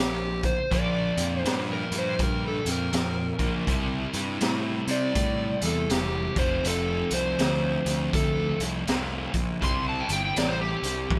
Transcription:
Already playing: A#1
0.00 G4
0.43 C5, kick, closed hi-hat
0.70 A#1 A#2 F3 A#3 D4 F4 A#4 D5, kick, closed hi-hat
1.17 F2, closed hi-hat
1.40 C5
1.45 G2, snare, closed hi-hat
1.73 A#4
1.91 G2, closed hi-hat
1.98 C5
2.19 G2, kick, closed hi-hat
2.23 A#4
2.48 A4
2.65 F2, closed hi-hat
2.72 A#4
2.93 F2, snare, closed hi-hat
3.39 A#1 A#2 F3 A#3 D4 F4 A#4, kick, closed hi-hat
3.67 C2 C3 G3 C4 E4 G4 C5, kick, closed hi-hat
4.13 G2, closed hi-hat
4.41 A2, snare, closed hi-hat
4.87 C3 D5, closed hi-hat
5.15 A2, kick, closed hi-hat
5.62 E2 A4, closed hi-hat
5.89 E1 G4, snare, closed hi-hat
6.36 F1 F2 C3 F3 A3 C4 F4 C5, kick, closed hi-hat
6.64 F1 A4, closed hi-hat
7.11 C2 C5, closed hi-hat
7.38 D2, snare, closed hi-hat
7.85 D2, closed hi-hat
8.13 D2 A4, kick, closed hi-hat
8.60 C2, closed hi-hat
8.86 C2 F2 C3 F3 A3 C4 F4, snare, closed hi-hat
9.34 A#1, kick, closed hi-hat
9.61 C2 C3 G3 C4 E4 G4 C5 C6, kick, closed hi-hat
9.89 A5
10.00 G5
10.09 G1 G5, closed hi-hat
10.25 G5
10.36 A1 D5, snare, closed hi-hat
10.48 C5
10.61 G4
10.83 C2, closed hi-hat
11.10 A1, kick, high tom

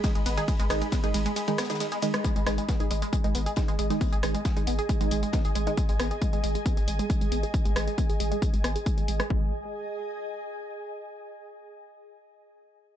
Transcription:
Already playing: G#4 D#5 B5
0.04 D#3 G#3 D#4, kick, snare, closed hi-hat, ride, shaker
0.15 G#1 G#3, closed hi-hat, ride, shaker
0.26 G#1 B3, closed hi-hat, open hi-hat, ride, shaker
0.37 D#3 G#3 D#4 G#4, snare, closed hi-hat, ride, shaker
0.48 G#3, kick, closed hi-hat, open hi-hat, ride, shaker
0.59 G#1 G#3, closed hi-hat, ride, shaker
0.70 G#1 D#3 G#3 D#4, cross-stick, closed hi-hat, open hi-hat, ride, shaker
0.82 G#3, closed hi-hat, ride, shaker
0.92 B3, kick, snare, closed hi-hat, ride, shaker
1.04 G#1 D#3 G#3 D#4 G#4, closed hi-hat, ride, shaker
1.14 G#1 G#3, open hi-hat, ride, shaker
1.26 G#3, closed hi-hat, ride, shaker
1.36 G#3, closed hi-hat, ride, shaker
1.48 D#3 G#3 D#4, closed hi-hat, ride, shaker
1.58 B3, cross-stick, snare, closed hi-hat, open hi-hat, ride, shaker
1.64 snare, closed hi-hat
1.70 D#3 G#3 D#4 G#4, snare, closed hi-hat, ride, shaker
1.75 snare, closed hi-hat
1.80 G#3, snare, closed hi-hat, ride, shaker
1.92 G#3, closed hi-hat, ride, shaker
2.02 D#3 G#3 D#4, closed hi-hat, open hi-hat, ride, shaker
2.14 G#3, cross-stick, closed hi-hat, ride, shaker
2.24 G#3 G#4, kick, closed hi-hat
2.29 D#5
2.36 G#1 G#3, closed hi-hat
2.46 G#1 D#3 G#3 D#4, cross-stick, snare, closed hi-hat, open hi-hat
2.58 G#3, closed hi-hat
2.69 B3 G#5, kick, snare, closed hi-hat
2.80 G#1 D#3 G#3 D#4 G#4, closed hi-hat
2.91 G#1 G#3, closed hi-hat, open hi-hat
3.02 G#3, closed hi-hat
3.13 G#3, kick, closed hi-hat
3.24 G#1 D#3 G#3 D#4, closed hi-hat
3.35 G#1 B3, closed hi-hat, open hi-hat
3.46 G#4, closed hi-hat
3.56 D#3 G#3 D#4, kick, snare, closed hi-hat
3.68 G#1 G#3, closed hi-hat
3.79 G#1 G#3, closed hi-hat, open hi-hat
3.90 D#3 G#3 D#4, snare, closed hi-hat
4.01 B3, kick, closed hi-hat, open hi-hat
4.12 G#1 G#4, closed hi-hat
4.23 G#1 D#3 G#3 D#4, cross-stick, closed hi-hat, open hi-hat
4.34 G#3, closed hi-hat
4.45 G#3, kick, snare, closed hi-hat
4.57 G#1 D#3 G#3 D#4, closed hi-hat
4.67 G#1 B3, closed hi-hat, open hi-hat
4.79 G#4, closed hi-hat
4.89 G#3, kick, closed hi-hat
5.01 G#1 D#3 G#3 D#4, closed hi-hat
5.11 G#1 G#3, closed hi-hat, open hi-hat
5.23 G#3, closed hi-hat
5.33 D#3 G#3 B3 D#4, kick, snare, closed hi-hat
5.45 G#1 G#4, closed hi-hat
5.55 G#1 G#3, closed hi-hat, open hi-hat
5.67 D#3 G#3 D#4, closed hi-hat
5.77 G#3, kick, closed hi-hat
5.89 G#1 G#3, closed hi-hat
5.99 G#1 B3, cross-stick, open hi-hat
6.11 G#4, closed hi-hat
6.22 G#3, kick, closed hi-hat
6.33 G#1 G#3, closed hi-hat
6.44 G#1 G#3, open hi-hat
6.55 G#3, closed hi-hat
6.66 B3, kick, closed hi-hat
6.77 G#1 G#4, closed hi-hat
6.88 G#1 G#3, open hi-hat
6.99 G#3, closed hi-hat
7.10 G#3, kick, closed hi-hat
7.21 G#1 G#3, closed hi-hat
7.32 G#1 B3, open hi-hat
7.43 G#4, closed hi-hat
7.54 G#3, kick, closed hi-hat
7.65 G#1 G#3, closed hi-hat
7.76 G#1 G#3, cross-stick, open hi-hat
7.87 G#3, closed hi-hat
7.98 B3, kick, closed hi-hat
8.09 G#1 G#4, closed hi-hat
8.20 G#1 G#3, open hi-hat
8.31 G#3, closed hi-hat
8.42 G#3, kick, closed hi-hat
8.53 G#1 G#3, closed hi-hat
8.64 G#1 B3, cross-stick, open hi-hat
8.76 G#4, closed hi-hat
8.86 G#3, kick, closed hi-hat
8.98 G#1 G#3, closed hi-hat
9.08 G#1 G#3, open hi-hat
9.20 G#3, cross-stick, closed hi-hat
9.30 G#1 G#3 G#4, kick
9.37 D#5
9.44 G#5

